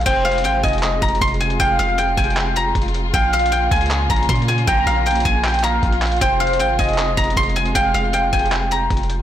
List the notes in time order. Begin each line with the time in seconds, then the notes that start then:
0.01 closed hi-hat
0.06 F1 C3 G#3 F4 C5 G5, kick, closed hi-hat, crash
0.25 F5, closed hi-hat
0.32 closed hi-hat
0.38 closed hi-hat
0.44 G#1 G5, closed hi-hat
0.63 F1 D#5 G#5, kick, closed hi-hat
0.68 closed hi-hat
0.73 closed hi-hat
0.78 closed hi-hat
0.83 clap, closed hi-hat
1.02 F1 A#5, kick, closed hi-hat
1.08 closed hi-hat
1.15 closed hi-hat
1.21 F1 C6, kick, closed hi-hat
1.28 closed hi-hat
1.34 closed hi-hat
1.40 G#5, closed hi-hat
1.50 closed hi-hat
1.60 F1 F5 G5, kick, closed hi-hat
1.79 F1 F5, closed hi-hat
1.98 G5, closed hi-hat
2.17 F1 G5 G#5, kick, closed hi-hat
2.24 closed hi-hat
2.30 closed hi-hat
2.37 clap, closed hi-hat
2.56 A#5, closed hi-hat
2.75 F1, kick, closed hi-hat
2.82 closed hi-hat
2.88 closed hi-hat
2.94 closed hi-hat
3.14 A#1 C#3 A#3 F5 G5, kick, closed hi-hat
3.33 F5, closed hi-hat
3.39 closed hi-hat
3.46 closed hi-hat
3.52 G5, closed hi-hat
3.71 C#2 G#5, kick, closed hi-hat
3.76 closed hi-hat
3.81 closed hi-hat
3.86 closed hi-hat
3.91 clap, closed hi-hat
4.10 A#1 A#5, kick, closed hi-hat
4.16 closed hi-hat
4.23 closed hi-hat
4.29 A#2 C6, kick, closed hi-hat
4.35 closed hi-hat
4.42 closed hi-hat
4.48 G#5, closed hi-hat
4.58 closed hi-hat
4.67 A#1 G5 A#5, kick, closed hi-hat
4.87 A#1 F5, closed hi-hat
5.06 G5, closed hi-hat
5.11 closed hi-hat
5.15 closed hi-hat
5.20 closed hi-hat
5.25 A#1 G#5, kick, closed hi-hat
5.44 G5, clap, closed hi-hat
5.49 closed hi-hat
5.54 closed hi-hat
5.59 closed hi-hat
5.64 F5 A#5, clap, closed hi-hat
5.83 A#1, kick, closed hi-hat
5.92 closed hi-hat
6.02 clap, closed hi-hat, open hi-hat
6.07 closed hi-hat
6.12 closed hi-hat
6.16 closed hi-hat
6.21 F1 C3 G#3 C5 G5, kick, closed hi-hat
6.40 F5, closed hi-hat
6.47 closed hi-hat
6.53 closed hi-hat
6.59 G#1 G5, closed hi-hat
6.79 F1 D#5 G#5, kick, closed hi-hat
6.84 closed hi-hat
6.89 closed hi-hat
6.93 closed hi-hat
6.98 clap, closed hi-hat
7.17 F1 A#5, kick, closed hi-hat
7.24 closed hi-hat
7.30 closed hi-hat
7.37 F1 C6, kick, closed hi-hat
7.43 closed hi-hat
7.49 closed hi-hat
7.56 G#5, closed hi-hat
7.65 closed hi-hat
7.75 F1 F5 G5, kick, closed hi-hat
7.94 F1 F5, closed hi-hat
8.13 G5, closed hi-hat
8.33 F1 G5 G#5, kick, closed hi-hat
8.39 closed hi-hat
8.46 closed hi-hat
8.52 clap, closed hi-hat
8.71 A#5, closed hi-hat
8.90 F1, kick, closed hi-hat
8.97 closed hi-hat
9.03 closed hi-hat
9.10 closed hi-hat